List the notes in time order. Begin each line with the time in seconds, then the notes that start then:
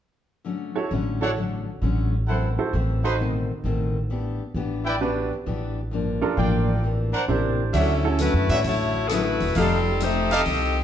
0.45 D3 F#3 A3 C#4
0.75 E4 F#4 A4 C#5
0.91 A1 D3 F#3 A3 C#4
1.21 D4 E4 F#4 A4 C#5 F#5
1.36 D3 F#3 A3 C#4
1.81 A1 D3 F#3 A3 C#4
2.27 F#2 E3 A3 C4 E4 A4 C5 F#5
2.59 E4 F#4 A4 C5
2.73 A1 F#2 E3 A3 C4
3.03 D#4 F#4 A4 B4 C5 C6
3.19 B2 D#3 A3 C4
3.64 A1 B2 D#3 A3 C4
4.10 E3 B3 D4 G4
4.54 A1 E3 B3 D4 G4
4.85 E4 B4 D5 G5
5.00 E3 B3 D4 F#4 G4 B4
5.46 A1 E3 B3 D4 G4
5.91 G2 F3 A#3 D4
6.21 D4 F4 A4 A#4
6.37 A1 G2 F3 A#3 D4 F4 D5 G5
6.83 C3 E3 A#3 D4
7.13 D4 A#4 C5 F#5
7.28 A1 C3 E3 A#3 D4 E4 G4 C5
7.73 D2 D3 F#3 C#4 D4 E4 F#4 A4 C#5 E5, open hi-hat
8.04 C#4 E4 F#4 A4
8.19 D3 F#3 A3 C#4 E4 F#4 B4, closed hi-hat
8.34 F#2
8.49 A2 D4 F#4 C#5 E5, open hi-hat
8.64 A1 D3 F#3 A3 C#4 E4 F#4 C#5, open hi-hat
9.07 D3 F#3 A4, cross-stick, closed hi-hat
9.12 A3 C#4 E4 F#4 B4
9.40 E1, open hi-hat
9.55 F1 F3 G3 A3 C4 D#4 G4 A4 F5, open hi-hat
10.00 F3 A3 D#4 G4 C5, closed hi-hat
10.31 C4 D#4 G4 A4 D#5 F5, open hi-hat
10.46 C2 F3 A3 D#4 G4, open hi-hat